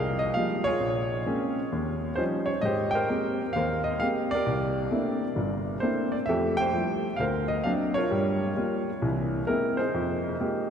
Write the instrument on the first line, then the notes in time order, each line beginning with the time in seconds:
grand piano
Already playing: C2 G#4 A#4 D#5 F5
0.19 D#5
0.34 F3 G3 G#3 A#3 D#4 F5
0.64 F4 G#4 C#5
0.81 A#1
1.26 G#3 A#3 C4 C#4
1.72 D#2
2.16 F3 G3 C#4 D#4 C5
2.46 C#5
2.61 G#2 G4 C5 D#5
2.91 G5
2.95 A#4 C5
3.09 G#3 A#3 C4 G4
3.53 D#2 F5
3.57 A#4 C5
3.84 D#5
4.00 G#3 A#3 C4 G4 F5
4.31 A#4 D5
4.36 G4
4.46 C2
4.91 A3 A#3 C4 D4 E4
5.36 G1 G2
5.80 A3 A#3 C4 D4 E4 C5
6.12 D5
6.26 F2 A3 G4 A4 E5
6.57 C5 E5 G5
6.74 F3 G3 A3 E4
7.16 D2 C5 F5
7.21 A#4
7.48 D#5
7.64 F#3 A#3 C4 D4 F5
7.94 F4 A#4 C#5
8.11 G2 G3
8.56 G3 A#3 F4
9.02 C2 E3
9.47 G#3 A#3 C4 E4 A#4
9.77 D#4 G#4 C5
9.94 F2
10.40 G#3 A#3 D#4 F4 G4